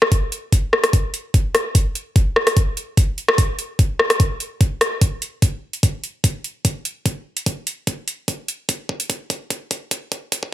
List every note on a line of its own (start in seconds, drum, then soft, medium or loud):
0.02 cross-stick medium
0.12 kick medium
0.12 closed hi-hat medium
0.32 closed hi-hat medium
0.52 kick medium
0.52 closed hi-hat medium
0.73 cross-stick medium
0.84 cross-stick medium
0.84 closed hi-hat medium
0.93 kick medium
0.93 closed hi-hat medium
1.14 closed hi-hat medium
1.34 kick medium
1.34 closed hi-hat medium
1.55 cross-stick soft
1.55 closed hi-hat medium
1.75 kick medium
1.75 closed hi-hat medium
1.95 closed hi-hat medium
2.16 kick medium
2.16 closed hi-hat medium
2.36 cross-stick medium
2.47 cross-stick medium
2.47 closed hi-hat medium
2.57 kick medium
2.57 closed hi-hat medium
2.77 closed hi-hat soft
2.97 kick medium
2.97 closed hi-hat medium
3.18 closed hi-hat soft
3.28 cross-stick medium
3.38 kick loud
3.38 closed hi-hat medium
3.59 closed hi-hat medium
3.79 kick medium
3.79 closed hi-hat medium
3.99 cross-stick medium
4.10 cross-stick medium
4.10 closed hi-hat medium
4.20 kick loud
4.20 closed hi-hat medium
4.40 closed hi-hat soft
4.61 kick loud
4.61 closed hi-hat medium
4.81 cross-stick medium
4.81 closed hi-hat soft
5.01 kick loud
5.01 closed hi-hat medium
5.22 closed hi-hat soft
5.42 kick loud
5.42 closed hi-hat medium
5.73 closed hi-hat medium
5.83 kick loud
5.83 closed hi-hat medium
6.04 closed hi-hat soft
6.24 kick loud
6.24 closed hi-hat medium
6.44 closed hi-hat medium
6.65 kick loud
6.65 closed hi-hat medium
6.85 closed hi-hat medium
7.06 kick loud
7.06 closed hi-hat medium
7.37 closed hi-hat medium
7.46 kick loud
7.46 closed hi-hat medium
7.67 closed hi-hat medium
7.87 kick loud
7.87 closed hi-hat medium
8.08 closed hi-hat medium
8.28 kick loud
8.28 closed hi-hat medium
8.48 closed hi-hat medium
8.69 kick loud
8.69 closed hi-hat medium
8.89 kick loud
9.00 closed hi-hat medium
9.10 kick loud
9.10 closed hi-hat medium
9.30 kick loud
9.30 closed hi-hat medium
9.50 kick loud
9.50 closed hi-hat medium
9.71 kick loud
9.71 closed hi-hat medium
9.91 kick loud
9.91 closed hi-hat medium
10.12 kick loud
10.12 closed hi-hat medium
10.32 kick loud
10.32 closed hi-hat medium
10.43 kick medium